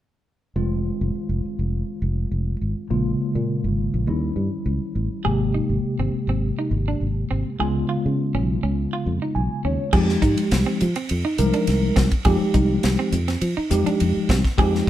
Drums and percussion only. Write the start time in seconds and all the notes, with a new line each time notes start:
9.93 kick, crash
10.09 snare
10.22 kick, hi-hat pedal, ride
10.38 ride
10.51 snare, ride
10.81 hi-hat pedal, ride
10.96 ride
11.09 ride
11.38 hi-hat pedal, ride
11.54 ride
11.67 snare, ride
11.96 kick, snare, hi-hat pedal, ride
12.12 kick, ride
12.25 kick, ride
12.54 kick, hi-hat pedal, ride
12.83 snare, ride
13.12 hi-hat pedal, ride
13.28 snare, ride
13.41 ride
13.71 hi-hat pedal, ride
13.87 ride
14.00 ride
14.29 kick, snare, hi-hat pedal, ride
14.44 kick, snare, ride
14.58 kick, ride
14.75 snare